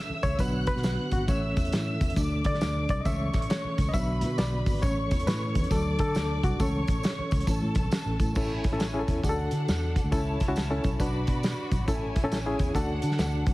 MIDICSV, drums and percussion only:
0, 0, Header, 1, 2, 480
1, 0, Start_track
1, 0, Key_signature, 3, "major"
1, 0, Tempo, 441176
1, 1397, Time_signature, 4, 2, 24, 8
1, 14727, End_track
2, 0, Start_track
2, 0, Title_t, "Drums"
2, 248, Note_on_c, 9, 54, 64
2, 253, Note_on_c, 9, 42, 80
2, 254, Note_on_c, 9, 36, 92
2, 357, Note_off_c, 9, 54, 0
2, 362, Note_off_c, 9, 36, 0
2, 362, Note_off_c, 9, 42, 0
2, 421, Note_on_c, 9, 36, 100
2, 423, Note_on_c, 9, 54, 114
2, 427, Note_on_c, 9, 42, 80
2, 530, Note_off_c, 9, 36, 0
2, 532, Note_off_c, 9, 54, 0
2, 536, Note_off_c, 9, 42, 0
2, 726, Note_on_c, 9, 42, 69
2, 728, Note_on_c, 9, 54, 49
2, 733, Note_on_c, 9, 36, 84
2, 834, Note_on_c, 9, 38, 38
2, 835, Note_off_c, 9, 42, 0
2, 837, Note_off_c, 9, 54, 0
2, 842, Note_off_c, 9, 36, 0
2, 907, Note_on_c, 9, 54, 101
2, 912, Note_on_c, 9, 42, 87
2, 917, Note_off_c, 9, 38, 0
2, 917, Note_on_c, 9, 38, 127
2, 1016, Note_off_c, 9, 54, 0
2, 1021, Note_off_c, 9, 42, 0
2, 1025, Note_off_c, 9, 38, 0
2, 1212, Note_on_c, 9, 42, 76
2, 1215, Note_on_c, 9, 36, 84
2, 1220, Note_on_c, 9, 54, 58
2, 1321, Note_off_c, 9, 42, 0
2, 1324, Note_off_c, 9, 36, 0
2, 1329, Note_off_c, 9, 54, 0
2, 1393, Note_on_c, 9, 42, 73
2, 1394, Note_on_c, 9, 36, 108
2, 1394, Note_on_c, 9, 54, 106
2, 1502, Note_off_c, 9, 42, 0
2, 1503, Note_off_c, 9, 36, 0
2, 1503, Note_off_c, 9, 54, 0
2, 1703, Note_on_c, 9, 42, 74
2, 1706, Note_on_c, 9, 36, 108
2, 1711, Note_on_c, 9, 54, 60
2, 1793, Note_off_c, 9, 42, 0
2, 1793, Note_on_c, 9, 42, 56
2, 1815, Note_off_c, 9, 36, 0
2, 1820, Note_off_c, 9, 54, 0
2, 1876, Note_off_c, 9, 42, 0
2, 1876, Note_on_c, 9, 42, 108
2, 1882, Note_on_c, 9, 54, 88
2, 1886, Note_on_c, 9, 38, 127
2, 1985, Note_off_c, 9, 42, 0
2, 1990, Note_off_c, 9, 54, 0
2, 1995, Note_off_c, 9, 38, 0
2, 2185, Note_on_c, 9, 42, 82
2, 2186, Note_on_c, 9, 36, 97
2, 2188, Note_on_c, 9, 54, 65
2, 2282, Note_off_c, 9, 42, 0
2, 2282, Note_on_c, 9, 42, 54
2, 2295, Note_off_c, 9, 36, 0
2, 2297, Note_off_c, 9, 54, 0
2, 2355, Note_on_c, 9, 36, 103
2, 2361, Note_on_c, 9, 54, 109
2, 2363, Note_off_c, 9, 42, 0
2, 2363, Note_on_c, 9, 42, 84
2, 2464, Note_off_c, 9, 36, 0
2, 2470, Note_off_c, 9, 54, 0
2, 2472, Note_off_c, 9, 42, 0
2, 2660, Note_on_c, 9, 42, 75
2, 2666, Note_on_c, 9, 36, 99
2, 2668, Note_on_c, 9, 54, 46
2, 2762, Note_on_c, 9, 38, 33
2, 2768, Note_off_c, 9, 42, 0
2, 2775, Note_off_c, 9, 36, 0
2, 2777, Note_off_c, 9, 54, 0
2, 2840, Note_on_c, 9, 54, 93
2, 2842, Note_on_c, 9, 42, 84
2, 2847, Note_off_c, 9, 38, 0
2, 2847, Note_on_c, 9, 38, 117
2, 2949, Note_off_c, 9, 54, 0
2, 2951, Note_off_c, 9, 42, 0
2, 2955, Note_off_c, 9, 38, 0
2, 3144, Note_on_c, 9, 42, 80
2, 3146, Note_on_c, 9, 36, 88
2, 3154, Note_on_c, 9, 54, 58
2, 3253, Note_off_c, 9, 42, 0
2, 3255, Note_off_c, 9, 36, 0
2, 3263, Note_off_c, 9, 54, 0
2, 3321, Note_on_c, 9, 42, 78
2, 3324, Note_on_c, 9, 36, 114
2, 3327, Note_on_c, 9, 54, 102
2, 3430, Note_off_c, 9, 42, 0
2, 3432, Note_off_c, 9, 36, 0
2, 3436, Note_off_c, 9, 54, 0
2, 3628, Note_on_c, 9, 42, 82
2, 3631, Note_on_c, 9, 38, 39
2, 3635, Note_on_c, 9, 36, 105
2, 3638, Note_on_c, 9, 54, 59
2, 3721, Note_off_c, 9, 42, 0
2, 3721, Note_on_c, 9, 42, 57
2, 3739, Note_off_c, 9, 38, 0
2, 3744, Note_off_c, 9, 36, 0
2, 3747, Note_off_c, 9, 54, 0
2, 3807, Note_off_c, 9, 42, 0
2, 3807, Note_on_c, 9, 42, 101
2, 3810, Note_on_c, 9, 54, 92
2, 3817, Note_on_c, 9, 38, 126
2, 3916, Note_off_c, 9, 42, 0
2, 3919, Note_off_c, 9, 54, 0
2, 3926, Note_off_c, 9, 38, 0
2, 4114, Note_on_c, 9, 42, 83
2, 4115, Note_on_c, 9, 36, 98
2, 4115, Note_on_c, 9, 54, 62
2, 4223, Note_off_c, 9, 42, 0
2, 4224, Note_off_c, 9, 36, 0
2, 4224, Note_off_c, 9, 54, 0
2, 4283, Note_on_c, 9, 36, 107
2, 4289, Note_on_c, 9, 54, 118
2, 4292, Note_on_c, 9, 42, 81
2, 4392, Note_off_c, 9, 36, 0
2, 4398, Note_off_c, 9, 54, 0
2, 4401, Note_off_c, 9, 42, 0
2, 4584, Note_on_c, 9, 42, 74
2, 4590, Note_on_c, 9, 54, 51
2, 4693, Note_off_c, 9, 42, 0
2, 4699, Note_off_c, 9, 54, 0
2, 4767, Note_on_c, 9, 54, 98
2, 4769, Note_on_c, 9, 42, 86
2, 4773, Note_on_c, 9, 38, 115
2, 4876, Note_off_c, 9, 54, 0
2, 4878, Note_off_c, 9, 42, 0
2, 4882, Note_off_c, 9, 38, 0
2, 5073, Note_on_c, 9, 46, 55
2, 5074, Note_on_c, 9, 36, 90
2, 5081, Note_on_c, 9, 54, 61
2, 5182, Note_off_c, 9, 46, 0
2, 5183, Note_off_c, 9, 36, 0
2, 5190, Note_off_c, 9, 54, 0
2, 5250, Note_on_c, 9, 54, 102
2, 5253, Note_on_c, 9, 36, 122
2, 5253, Note_on_c, 9, 42, 77
2, 5358, Note_off_c, 9, 54, 0
2, 5361, Note_off_c, 9, 36, 0
2, 5362, Note_off_c, 9, 42, 0
2, 5559, Note_on_c, 9, 42, 81
2, 5563, Note_on_c, 9, 54, 57
2, 5564, Note_on_c, 9, 36, 108
2, 5653, Note_off_c, 9, 42, 0
2, 5653, Note_on_c, 9, 42, 54
2, 5672, Note_off_c, 9, 54, 0
2, 5673, Note_off_c, 9, 36, 0
2, 5735, Note_on_c, 9, 54, 89
2, 5736, Note_off_c, 9, 42, 0
2, 5736, Note_on_c, 9, 42, 110
2, 5746, Note_on_c, 9, 38, 127
2, 5844, Note_off_c, 9, 54, 0
2, 5845, Note_off_c, 9, 42, 0
2, 5855, Note_off_c, 9, 38, 0
2, 6041, Note_on_c, 9, 54, 63
2, 6042, Note_on_c, 9, 42, 75
2, 6043, Note_on_c, 9, 36, 88
2, 6135, Note_off_c, 9, 42, 0
2, 6135, Note_on_c, 9, 42, 53
2, 6150, Note_off_c, 9, 54, 0
2, 6152, Note_off_c, 9, 36, 0
2, 6209, Note_on_c, 9, 54, 114
2, 6210, Note_on_c, 9, 36, 105
2, 6217, Note_off_c, 9, 42, 0
2, 6217, Note_on_c, 9, 42, 83
2, 6318, Note_off_c, 9, 54, 0
2, 6319, Note_off_c, 9, 36, 0
2, 6326, Note_off_c, 9, 42, 0
2, 6515, Note_on_c, 9, 42, 77
2, 6518, Note_on_c, 9, 54, 55
2, 6521, Note_on_c, 9, 36, 93
2, 6623, Note_off_c, 9, 42, 0
2, 6627, Note_off_c, 9, 54, 0
2, 6630, Note_off_c, 9, 36, 0
2, 6689, Note_on_c, 9, 54, 99
2, 6700, Note_on_c, 9, 42, 95
2, 6704, Note_on_c, 9, 38, 114
2, 6798, Note_off_c, 9, 54, 0
2, 6809, Note_off_c, 9, 42, 0
2, 6813, Note_off_c, 9, 38, 0
2, 7001, Note_on_c, 9, 36, 92
2, 7004, Note_on_c, 9, 42, 77
2, 7006, Note_on_c, 9, 54, 57
2, 7110, Note_off_c, 9, 36, 0
2, 7113, Note_off_c, 9, 42, 0
2, 7115, Note_off_c, 9, 54, 0
2, 7177, Note_on_c, 9, 54, 106
2, 7178, Note_on_c, 9, 36, 118
2, 7180, Note_on_c, 9, 42, 73
2, 7285, Note_off_c, 9, 54, 0
2, 7287, Note_off_c, 9, 36, 0
2, 7289, Note_off_c, 9, 42, 0
2, 7479, Note_on_c, 9, 54, 63
2, 7487, Note_on_c, 9, 42, 83
2, 7489, Note_on_c, 9, 36, 101
2, 7588, Note_off_c, 9, 54, 0
2, 7596, Note_off_c, 9, 42, 0
2, 7598, Note_off_c, 9, 36, 0
2, 7652, Note_on_c, 9, 54, 93
2, 7660, Note_on_c, 9, 42, 107
2, 7670, Note_on_c, 9, 38, 125
2, 7761, Note_off_c, 9, 54, 0
2, 7769, Note_off_c, 9, 42, 0
2, 7779, Note_off_c, 9, 38, 0
2, 7955, Note_on_c, 9, 54, 70
2, 7963, Note_on_c, 9, 42, 82
2, 7964, Note_on_c, 9, 36, 100
2, 8056, Note_off_c, 9, 42, 0
2, 8056, Note_on_c, 9, 42, 54
2, 8064, Note_off_c, 9, 54, 0
2, 8073, Note_off_c, 9, 36, 0
2, 8130, Note_on_c, 9, 36, 106
2, 8130, Note_on_c, 9, 54, 108
2, 8140, Note_off_c, 9, 42, 0
2, 8140, Note_on_c, 9, 42, 76
2, 8238, Note_off_c, 9, 36, 0
2, 8239, Note_off_c, 9, 54, 0
2, 8248, Note_off_c, 9, 42, 0
2, 8431, Note_on_c, 9, 42, 74
2, 8439, Note_on_c, 9, 36, 103
2, 8440, Note_on_c, 9, 54, 54
2, 8540, Note_off_c, 9, 42, 0
2, 8548, Note_off_c, 9, 36, 0
2, 8549, Note_off_c, 9, 54, 0
2, 8612, Note_on_c, 9, 54, 94
2, 8618, Note_on_c, 9, 42, 98
2, 8622, Note_on_c, 9, 38, 127
2, 8721, Note_off_c, 9, 54, 0
2, 8727, Note_off_c, 9, 42, 0
2, 8731, Note_off_c, 9, 38, 0
2, 8917, Note_on_c, 9, 42, 80
2, 8918, Note_on_c, 9, 36, 97
2, 8921, Note_on_c, 9, 54, 54
2, 9026, Note_off_c, 9, 42, 0
2, 9027, Note_off_c, 9, 36, 0
2, 9030, Note_off_c, 9, 54, 0
2, 9088, Note_on_c, 9, 54, 100
2, 9095, Note_on_c, 9, 36, 124
2, 9095, Note_on_c, 9, 49, 92
2, 9196, Note_off_c, 9, 54, 0
2, 9204, Note_off_c, 9, 36, 0
2, 9204, Note_off_c, 9, 49, 0
2, 9400, Note_on_c, 9, 54, 57
2, 9401, Note_on_c, 9, 42, 73
2, 9403, Note_on_c, 9, 38, 38
2, 9405, Note_on_c, 9, 36, 102
2, 9509, Note_off_c, 9, 42, 0
2, 9509, Note_off_c, 9, 54, 0
2, 9512, Note_off_c, 9, 38, 0
2, 9514, Note_off_c, 9, 36, 0
2, 9571, Note_on_c, 9, 54, 89
2, 9573, Note_on_c, 9, 42, 105
2, 9583, Note_on_c, 9, 38, 123
2, 9680, Note_off_c, 9, 54, 0
2, 9682, Note_off_c, 9, 42, 0
2, 9692, Note_off_c, 9, 38, 0
2, 9877, Note_on_c, 9, 54, 63
2, 9880, Note_on_c, 9, 36, 86
2, 9880, Note_on_c, 9, 42, 75
2, 9986, Note_off_c, 9, 54, 0
2, 9989, Note_off_c, 9, 36, 0
2, 9989, Note_off_c, 9, 42, 0
2, 10048, Note_on_c, 9, 36, 101
2, 10056, Note_on_c, 9, 54, 104
2, 10057, Note_on_c, 9, 42, 79
2, 10156, Note_off_c, 9, 36, 0
2, 10165, Note_off_c, 9, 42, 0
2, 10165, Note_off_c, 9, 54, 0
2, 10348, Note_on_c, 9, 42, 69
2, 10361, Note_on_c, 9, 54, 52
2, 10457, Note_off_c, 9, 42, 0
2, 10470, Note_off_c, 9, 54, 0
2, 10536, Note_on_c, 9, 54, 94
2, 10537, Note_on_c, 9, 42, 80
2, 10542, Note_on_c, 9, 38, 114
2, 10645, Note_off_c, 9, 54, 0
2, 10646, Note_off_c, 9, 42, 0
2, 10651, Note_off_c, 9, 38, 0
2, 10836, Note_on_c, 9, 36, 85
2, 10837, Note_on_c, 9, 42, 75
2, 10841, Note_on_c, 9, 54, 60
2, 10944, Note_off_c, 9, 36, 0
2, 10945, Note_off_c, 9, 42, 0
2, 10950, Note_off_c, 9, 54, 0
2, 11011, Note_on_c, 9, 54, 103
2, 11014, Note_on_c, 9, 36, 113
2, 11014, Note_on_c, 9, 42, 74
2, 11119, Note_off_c, 9, 54, 0
2, 11122, Note_off_c, 9, 36, 0
2, 11123, Note_off_c, 9, 42, 0
2, 11316, Note_on_c, 9, 54, 62
2, 11322, Note_on_c, 9, 42, 82
2, 11324, Note_on_c, 9, 36, 102
2, 11324, Note_on_c, 9, 38, 39
2, 11425, Note_off_c, 9, 54, 0
2, 11431, Note_off_c, 9, 42, 0
2, 11432, Note_off_c, 9, 36, 0
2, 11433, Note_off_c, 9, 38, 0
2, 11486, Note_on_c, 9, 54, 91
2, 11495, Note_on_c, 9, 42, 102
2, 11505, Note_on_c, 9, 38, 127
2, 11595, Note_off_c, 9, 54, 0
2, 11604, Note_off_c, 9, 42, 0
2, 11614, Note_off_c, 9, 38, 0
2, 11791, Note_on_c, 9, 54, 64
2, 11798, Note_on_c, 9, 36, 92
2, 11801, Note_on_c, 9, 42, 73
2, 11900, Note_off_c, 9, 54, 0
2, 11907, Note_off_c, 9, 36, 0
2, 11910, Note_off_c, 9, 42, 0
2, 11964, Note_on_c, 9, 36, 89
2, 11966, Note_on_c, 9, 54, 97
2, 11976, Note_on_c, 9, 42, 83
2, 12073, Note_off_c, 9, 36, 0
2, 12075, Note_off_c, 9, 54, 0
2, 12085, Note_off_c, 9, 42, 0
2, 12264, Note_on_c, 9, 42, 71
2, 12271, Note_on_c, 9, 36, 87
2, 12271, Note_on_c, 9, 54, 50
2, 12372, Note_off_c, 9, 42, 0
2, 12380, Note_off_c, 9, 36, 0
2, 12380, Note_off_c, 9, 54, 0
2, 12439, Note_on_c, 9, 54, 105
2, 12446, Note_on_c, 9, 42, 78
2, 12450, Note_on_c, 9, 38, 107
2, 12548, Note_off_c, 9, 54, 0
2, 12554, Note_off_c, 9, 42, 0
2, 12559, Note_off_c, 9, 38, 0
2, 12745, Note_on_c, 9, 42, 65
2, 12747, Note_on_c, 9, 36, 90
2, 12752, Note_on_c, 9, 54, 63
2, 12854, Note_off_c, 9, 42, 0
2, 12855, Note_off_c, 9, 36, 0
2, 12861, Note_off_c, 9, 54, 0
2, 12923, Note_on_c, 9, 36, 112
2, 12923, Note_on_c, 9, 42, 73
2, 12926, Note_on_c, 9, 54, 102
2, 13032, Note_off_c, 9, 36, 0
2, 13032, Note_off_c, 9, 42, 0
2, 13035, Note_off_c, 9, 54, 0
2, 13227, Note_on_c, 9, 42, 81
2, 13229, Note_on_c, 9, 38, 43
2, 13231, Note_on_c, 9, 36, 107
2, 13235, Note_on_c, 9, 54, 56
2, 13336, Note_off_c, 9, 42, 0
2, 13338, Note_off_c, 9, 38, 0
2, 13340, Note_off_c, 9, 36, 0
2, 13343, Note_off_c, 9, 54, 0
2, 13400, Note_on_c, 9, 42, 99
2, 13403, Note_on_c, 9, 54, 87
2, 13410, Note_on_c, 9, 38, 127
2, 13509, Note_off_c, 9, 42, 0
2, 13512, Note_off_c, 9, 54, 0
2, 13519, Note_off_c, 9, 38, 0
2, 13700, Note_on_c, 9, 42, 76
2, 13704, Note_on_c, 9, 36, 93
2, 13709, Note_on_c, 9, 54, 61
2, 13809, Note_off_c, 9, 42, 0
2, 13813, Note_off_c, 9, 36, 0
2, 13818, Note_off_c, 9, 54, 0
2, 13869, Note_on_c, 9, 36, 94
2, 13877, Note_on_c, 9, 42, 75
2, 13879, Note_on_c, 9, 54, 116
2, 13978, Note_off_c, 9, 36, 0
2, 13985, Note_off_c, 9, 42, 0
2, 13988, Note_off_c, 9, 54, 0
2, 14167, Note_on_c, 9, 42, 69
2, 14184, Note_on_c, 9, 54, 56
2, 14267, Note_on_c, 9, 38, 35
2, 14275, Note_off_c, 9, 42, 0
2, 14292, Note_off_c, 9, 54, 0
2, 14349, Note_on_c, 9, 42, 83
2, 14353, Note_off_c, 9, 38, 0
2, 14353, Note_on_c, 9, 38, 118
2, 14356, Note_on_c, 9, 54, 87
2, 14457, Note_off_c, 9, 42, 0
2, 14462, Note_off_c, 9, 38, 0
2, 14465, Note_off_c, 9, 54, 0
2, 14651, Note_on_c, 9, 42, 76
2, 14652, Note_on_c, 9, 36, 99
2, 14664, Note_on_c, 9, 54, 51
2, 14727, Note_off_c, 9, 36, 0
2, 14727, Note_off_c, 9, 42, 0
2, 14727, Note_off_c, 9, 54, 0
2, 14727, End_track
0, 0, End_of_file